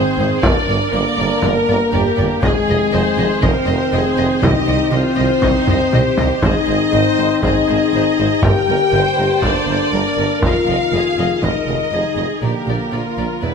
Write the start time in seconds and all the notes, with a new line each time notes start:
Already playing: D#3 C4 G#4 C5
0.17 G#1 G#2 C5, taiko low-mid
0.42 G1 G2 D3 D4 A#4 D5, taiko
0.68 G1 G2 D5
0.92 G1 G2 A#3 A#4 D5
1.17 G1 G2 D5
1.42 G1 G2 A#4 D5, taiko
1.67 G1 G2 D5
1.91 G1 G2 G4 D5, taiko low-mid
2.17 G1 G2 D5, taiko low-mid
2.42 F1 F2 D#3 G#3 C4 G#4 D#5, taiko
2.68 F1 F2 D#5
2.92 F1 F2 C5 D#5
3.18 F1 F2 D#5
3.42 F1 F2 C4 A#4 C5 D#5, taiko
3.66 F1 F2 D#5
3.92 F1 F2 G#4 D#5
4.17 F1 F2 D#5
4.41 C2 C3 D#4 G4 D#5, taiko
4.67 C2 C3 D#5
4.91 C2 C3 C4 F4 C5 D#5
5.16 C2 C3 D#5
5.42 C2 C3 D#4 D#5, taiko
5.67 C2 C3 D#5, taiko low-mid
5.92 C2 C3 G4 D#5, taiko mid
6.17 C2 C3 D#5, taiko low
6.41 G#1 G#2 D#3 C4 D#4 G#4 C5 D#5, taiko
6.66 G#1 G#2 C5
6.92 G#1 G#2 C5
7.17 G#1 G#2 C5
7.42 G#1 G#2 D#4 G#4 C5 D#5, taiko
7.68 G#1 G#2 C5
7.93 G#1 G#2 C5
8.18 G#1 G#2 C5
8.41 G1 G2 D3 A#3 G4 A#4 G5, taiko
8.67 G1 G2 A#4
8.92 G1 G2 A#4 C5
9.18 G1 G2 A#4
9.42 G1 G2 D4 A#4 D5, taiko
9.67 G1 G2 A#4
9.92 G1 G2 A#4
10.17 G1 G2
10.21 A#4
10.42 F1 F2 D#3 F4 D#5 F5, taiko
10.67 F1 F2 D#5
10.91 F1 F2 G#4 D#5
11.17 F1 F2 D#5
11.42 F1 F2 G#3 D#4 A#4 D#5, taiko
11.67 F1 F2 D#5
11.92 F1 F2 G#4 D#5
12.17 F1 F2 D#5
12.42 A#1 A#2 D3 F3 A#3 G4 A#4 D5
12.67 A#1 A#2 D5
12.92 A#1 A#2 F4 D5
13.17 A#1 A#2 D5
13.42 E1 E2 G#3 B3 E4 B4 D5